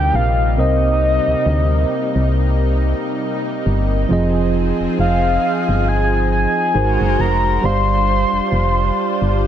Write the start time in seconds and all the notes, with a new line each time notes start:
Already playing: D2 C3 G3 A#3 C4 D#4 A#4 C5 D#5 G5
0.14 A#1 F5
0.56 C2 C3 C4 A#4 C5 D#5
0.60 D#5
1.28 D2
1.46 D2
2.15 C2
3.66 G1
4.09 F1 F3 C4 F4 G#4
4.13 D#5
4.80 F1
4.99 F1 F5
5.68 G1
5.88 G#5
6.32 G#5
6.74 G#1 G#3 D#4 F#4 A#4 C5
7.00 F#1
7.19 F1 A#5
7.61 G1 G3 D4 F4 G4 C5 D5
7.65 F5 C6
8.33 F1
8.52 F1
9.22 G1